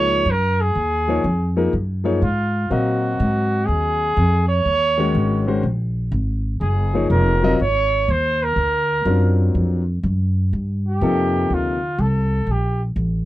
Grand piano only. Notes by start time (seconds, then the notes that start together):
Already playing: F3 A#3 D#4 G#4 C#5
1.08 F3 A#3 D#4 G#4 C#5
1.56 F3 A#3 D#4 G#4 A#4
2.04 F3 A#3 D#4 G#4 C#5
2.70 F#3 C4 A#4 D#5 F5
4.98 D#3 G#3 C#4 F#4 C#5
5.47 D#3 G#3 C#4 F#4 C5
6.94 F3 A#3 D#4 G#4 C#5
7.43 F#3 C4 F4 A#4 D#5
9.06 F#3 C4 D4 F4 A#4
11.02 C3 F3 A#3 D#4 A4